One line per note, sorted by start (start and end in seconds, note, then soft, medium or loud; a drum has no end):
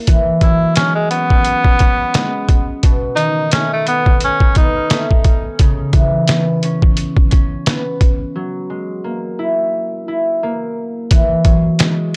0.00 0.13 F#3 medium
0.00 0.13 G#3 medium
0.00 2.61 A#3 loud
0.00 1.65 E4 medium
0.07 2.54 E3 medium
0.07 kick loud
0.07 closed hi-hat loud
0.41 2.54 F#3 medium
0.41 0.74 E4 medium
0.41 kick medium
0.41 closed hi-hat medium
0.76 2.14 G#3 medium
0.76 0.94 C#4 medium
0.76 snare loud
0.76 closed hi-hat loud
0.95 1.09 G#3 medium
1.10 2.79 B3 medium
1.10 1.79 C#4 medium
1.10 closed hi-hat medium
1.30 kick loud
1.45 closed hi-hat medium
1.64 kick medium
1.79 4.70 C#4 medium
1.79 kick medium
1.79 closed hi-hat medium
2.14 2.54 G#3 medium
2.14 snare loud
2.14 snare medium
2.14 closed hi-hat loud
2.49 kick loud
2.49 closed hi-hat medium
2.83 3.23 B2 medium
2.83 kick loud
2.83 closed hi-hat loud
3.16 5.64 D#3 medium
3.16 3.48 D#4 medium
3.16 closed hi-hat medium
3.51 4.91 A3 medium
3.51 3.70 C#4 medium
3.51 snare loud
3.51 snare medium
3.51 closed hi-hat loud
3.73 3.86 A3 medium
3.86 4.57 B3 medium
3.86 4.19 B3 medium
3.86 closed hi-hat medium
4.06 kick loud
4.21 4.54 C#4 medium
4.21 closed hi-hat medium
4.40 kick medium
4.55 6.28 B3 medium
4.55 5.08 D#4 medium
4.55 kick medium
4.55 closed hi-hat medium
4.90 8.24 A3 loud
4.90 snare loud
4.90 snare medium
4.90 closed hi-hat loud
5.11 kick medium
5.24 kick loud
5.24 closed hi-hat medium
5.59 8.40 C#3 medium
5.59 kick loud
5.59 closed hi-hat loud
5.93 8.40 E3 medium
5.93 kick medium
5.93 closed hi-hat medium
6.28 7.67 B3 medium
6.28 snare loud
6.28 snare medium
6.28 closed hi-hat loud
6.63 7.30 C#4 medium
6.63 closed hi-hat medium
6.82 kick loud
6.97 closed hi-hat medium
7.17 kick medium
7.31 10.20 C#4 medium
7.31 kick medium
7.31 closed hi-hat medium
7.66 9.10 B3 medium
7.66 snare loud
7.66 closed hi-hat loud
8.01 kick loud
8.01 closed hi-hat medium
8.35 11.16 F#3 medium
8.70 11.16 G#3 medium
9.04 10.43 A#3 medium
9.39 10.08 E4 medium
10.08 12.16 E4 medium
10.43 12.16 A#3 loud
11.11 12.16 E3 medium
11.11 kick loud
11.11 closed hi-hat loud
11.45 12.16 F#3 medium
11.45 kick medium
11.45 closed hi-hat medium
11.79 12.16 G#3 medium
11.79 finger snap medium
11.79 snare loud
11.79 snare medium
11.79 closed hi-hat loud